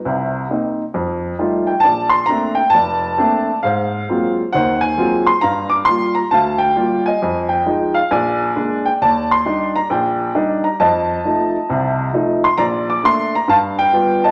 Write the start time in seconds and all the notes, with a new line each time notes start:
0.05 C2 C3
0.50 A#3 C4 D#4
0.94 F2
1.39 G3 A3 D#4 F4
1.67 G5
1.80 A#1 D5 A5
2.09 C6
2.26 A3 A#3 C4 D4 A#5
2.55 G5
2.70 F1 A5
2.74 D5
3.18 A3 A#3 C4 D4
3.63 G#2 C5 F5
4.09 F#3 G#3 A#3 C4 F4
4.53 D#2 D#3 C5 F#5
4.81 G#5
4.97 F#3 G#3 A#3 C4 F4
5.27 C6
5.41 G2 F5 A#5
5.70 D6
5.85 G3 A#3 F4 C6
6.15 A#5
6.31 D2 F5 A5
6.58 G5
6.76 G3 A#3 F4
7.06 D#5 G#5
7.22 F2
7.49 G5
7.66 F3 G#3 D#4
7.94 F5
8.11 A#1 D5 G#5
8.56 G#3 A#3 D4
8.86 G5
9.01 D#2 D5 A5
9.31 C6
9.46 G3 D4 D#4
9.76 A#5
9.90 A#1 D5 G5
10.35 G3 D4 D#4
10.64 A#5
10.80 F2 D#5 A5
11.25 F3 A3 D#4
11.69 C2 C3
12.14 F3 A3 D#4
12.44 C6
12.58 A#1 D5 A#5
12.90 D6
13.03 A3 A#3 D4 C6
13.35 A#5
13.48 G2 F5 A5
13.79 G5
13.92 G3 B3 F4
14.24 D#5 A5